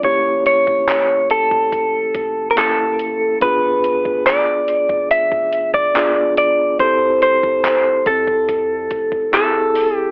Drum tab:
HH |x-x-x-x-x-x-x-x-|x-x-x-x-x-x-x-x-|x-x-x-x-x-x-x-o-|
CP |----x-------x---|----x-------x---|----x-------x---|
BD |o--o---oo-o-----|o--o---o-o-o----|o--o--ooo-oo----|